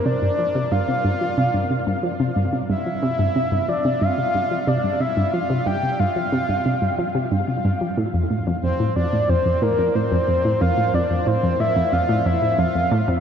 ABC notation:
X:1
M:4/4
L:1/16
Q:1/4=91
K:Gdor
V:1 name="Soft synth lead"
d4 f8 z4 | e6 d2 f4 d2 e2 | f2 g2 f8 z4 | z4 c2 d2 c2 B2 c4 |
f2 d2 c2 e2 f2 e2 f3 z |]
V:2 name="Synth arpeggio sound" clef=bass
C, G,, F, C, G,, C, G,, F, C, G,, C, G,, F, C, G,, C, | G,, F, C, G,, C, G,, F, C, G,, C, G,, F, C, G,, C, G,, | F, C, G,, C, G,, F, C, G,, C, G,, F, C, G,, C, G,, F, | A,, F,, A,, F,, F,, A,, F,, A,, F,, F,, A,, F,, A,, F,, F,, A,, |
F,, A,, F,, F,, A,, F,, A,, F,, F,, A,, F,, A,, F,, F,, A,, F,, |]